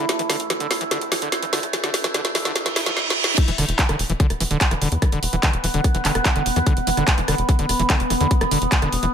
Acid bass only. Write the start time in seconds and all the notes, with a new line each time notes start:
0.19 E3
0.30 D3
0.50 E3
0.60 D3
0.81 E3
0.91 D3
1.12 E3
1.22 D3
1.43 E3
1.53 D3
1.73 E3
1.84 D3
2.04 E3
2.14 D3
2.35 E3
2.45 D3
2.66 E3
2.76 E4
2.86 F3
3.48 E3
3.58 D3
3.79 E3
3.89 D3
4.10 E3
4.20 D3
4.40 E3
4.51 D3
4.71 E3
4.82 D3
5.02 E3
5.12 D3
5.33 E3
5.43 D3
5.64 E3
5.74 D3
5.95 E3
6.05 D3
6.25 E3
6.36 D3
6.56 E3
6.67 D3
6.87 E3
6.97 D3
7.18 E3
7.28 D3
7.49 E3
7.59 D3
7.80 E3
7.90 D3
8.10 E3
8.21 D3
8.41 E3
8.51 D3
8.72 E3
8.82 D3
9.03 E3